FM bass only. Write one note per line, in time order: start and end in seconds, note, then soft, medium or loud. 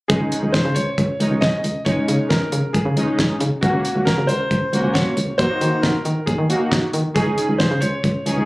0.10 0.19 C#2 loud
0.21 0.30 C#2 medium
0.43 0.52 C#2 medium
0.54 0.64 C#2 loud
0.65 0.74 C#3 loud
0.76 0.85 C#2 loud
0.98 1.07 C#2 loud
1.20 1.30 C#2 loud
1.31 1.41 C#2 loud
1.42 1.52 C2 medium
1.64 1.74 C#2 medium
1.86 1.96 C#2 loud
2.08 2.18 C#3 medium
2.31 2.40 C#2 medium
2.52 2.62 C#3 medium
2.74 2.84 C#2 loud
2.85 2.95 C#3 loud
2.96 3.06 C#2 loud
3.19 3.28 C#2 medium
3.41 3.50 C#3 loud
3.63 3.72 C#2 loud
3.74 3.83 C#2 medium
3.96 4.05 C#2 medium
4.07 4.16 C#2 loud
4.18 4.27 C#3 medium
4.29 4.38 C#2 loud
4.51 4.60 C#2 loud
4.73 4.82 C#2 loud
4.84 4.93 C#2 medium
4.95 5.05 C2 medium
5.17 5.27 C#2 medium
5.39 5.49 D#2 loud
5.61 5.71 D#3 medium
5.83 5.93 D#2 loud
6.05 6.15 D#3 loud
6.27 6.37 D#2 loud
6.38 6.48 D#3 medium
6.50 6.59 D#2 loud
6.72 6.81 D#2 loud
6.94 7.03 D#3 loud
7.16 7.25 C#2 loud
7.27 7.36 C#2 medium
7.49 7.58 C#2 loud
7.60 7.69 C#2 loud
7.71 7.80 C#3 loud
7.82 7.91 C#2 loud
8.04 8.13 C#2 loud
8.26 8.35 C#2 medium
8.37 8.45 C#2 medium